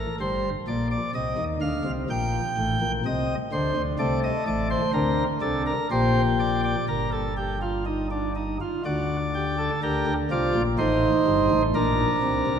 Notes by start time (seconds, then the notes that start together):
Already playing: A#4
0.20 G1 G2 C5
0.68 A#1 A#2 D5
0.91 D5
1.15 C2 C3 D#5
1.38 D#2 D#3
1.61 D2 D3 F5
1.85 C2 C3
2.10 A#1 A#2 G5
2.57 A1 A2
2.81 A#1 A#2
3.05 C2 C3 D#5
3.53 D2 D3 C5
3.77 D2 D3
3.99 C2 C3 A3 D5
4.24 D#5
4.47 A1 A2 D5
4.71 C5
4.94 D2 D3 C4 A#4
5.41 C2 C3 D4 A4
5.67 A#4
5.91 A#1 A#2 G4 C5
6.40 D5
6.64 D5
6.89 G1 G2 A#4
7.12 A4
7.37 G4
7.62 F4
7.86 D#4
8.11 D4
8.36 D#4
8.61 F4
8.85 D2 D3 F#4 D5
9.35 G4
9.58 A4
9.83 D2 D3 G4 A#4
10.07 D2 D3
10.31 C2 C3 F4 D5
10.55 A#1 A#2
10.78 A1 A2 D#4 C5
11.27 G1 G2
11.51 A1 A2
11.75 A#1 A#2 D4 A#4
12.23 C2 C3
12.47 C2 C3